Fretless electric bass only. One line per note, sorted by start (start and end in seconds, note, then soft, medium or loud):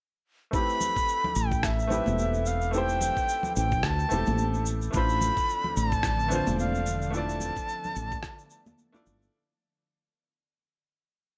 1.36 2.00 A1 medium
2.07 3.10 E1 loud
3.57 3.84 A1 medium
3.84 4.05 D2 loud
4.12 4.23 E1 medium
4.27 4.89 A1 medium
4.94 5.30 A1 loud
5.77 6.40 A1 medium
6.47 7.50 E1 medium
7.96 8.17 A1 loud
9.07 9.27 G1 medium